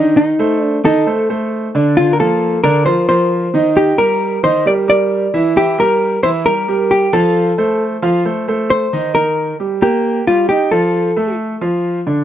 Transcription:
Already playing: grand piano D#3 D#4 D#5, hollow-body jazz guitar D4
0.17 hollow-body jazz guitar D#4
0.39 grand piano A3 A4 C5
0.62 hollow-body jazz guitar D4
0.84 grand piano D#3 D#4 D#5, hollow-body jazz guitar A4
1.07 grand piano A3 A4 C5
1.30 grand piano A3 A4 C5
1.75 grand piano D3 D4 D5
1.97 grand piano D3 D4 D5, hollow-body jazz guitar F4
2.13 hollow-body jazz guitar A#4
2.19 grand piano F3 A#3 F4, hollow-body jazz guitar A4
2.64 grand piano D3 D4 D5, hollow-body jazz guitar A#4
2.86 grand piano F3 F4 A#4, hollow-body jazz guitar C5
3.09 grand piano F3 F4 A#4, hollow-body jazz guitar C5
3.54 grand piano D#3 D#4 D#5
3.77 hollow-body jazz guitar G4
3.98 grand piano G3 G4 A#4, hollow-body jazz guitar A#4
4.43 grand piano D#3 D#4 D#5, hollow-body jazz guitar C5
4.66 grand piano G3 G4 A#4, hollow-body jazz guitar D5
4.87 grand piano G3 G4 A#4, hollow-body jazz guitar D5
5.34 grand piano E3 E4 E5
5.56 grand piano E3 E4 E5, hollow-body jazz guitar G4
5.78 grand piano G3 G4 A#4, hollow-body jazz guitar A#4
6.23 grand piano E3 E4 E5, hollow-body jazz guitar C5
6.45 grand piano G3 G4 A#4, hollow-body jazz guitar A#4
6.68 grand piano G3 G4 A#4
6.91 hollow-body jazz guitar G4
7.13 grand piano F3 F4 F5, hollow-body jazz guitar A4
7.58 grand piano A3 A4 C5
8.02 grand piano F3 F4 F5
8.25 grand piano A3 A4 C5
8.48 grand piano A3 A4 C5
8.70 hollow-body jazz guitar C5
8.93 grand piano D#3 D#4 D#5
9.15 grand piano D#3 D#4, hollow-body jazz guitar A#4
9.60 grand piano G3 G4
9.82 grand piano A#3 A#4, hollow-body jazz guitar G4
10.27 grand piano G3 G4, hollow-body jazz guitar F4
10.49 grand piano D#4 D#5, hollow-body jazz guitar G4
10.71 grand piano F3 F4, hollow-body jazz guitar A4
11.17 grand piano A3 A4
11.61 grand piano F3 F4
12.07 grand piano D3 D4

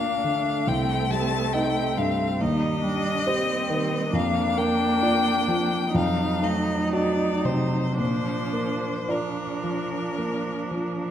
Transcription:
Already playing: grand piano D2 A#3 F4 D5, cello A#3, viola D4, violin F5
0.24 grand piano D3, cello A3
0.67 grand piano C2, viola C4, violin G5
1.10 grand piano G3, violin A5
1.53 viola C4, grand piano D#4 D#5, violin G5
1.97 grand piano G2, violin F5
2.40 grand piano D#2, cello G3, viola D#4, violin D#5
2.83 grand piano G3, viola D4
3.26 cello G3, viola C4, grand piano G4 C5
3.70 grand piano D#3
4.13 grand piano F2, cello A#3, viola D4, violin F5
4.58 grand piano A#3, violin G5
5.02 grand piano F4 D5
5.48 grand piano F3
5.94 grand piano F2, cello F#3, viola D#4, violin F5
6.43 grand piano A3, violin D#5
6.93 grand piano F#4 D#5, violin D5
7.45 grand piano C3, violin C5
7.98 grand piano A#2, cello F3, viola D4, violin C5
8.53 grand piano A#3
9.08 cello F3, viola D4, grand piano F4 D5, violin A#4
9.64 grand piano F3
10.18 grand piano A#3
10.71 grand piano F3

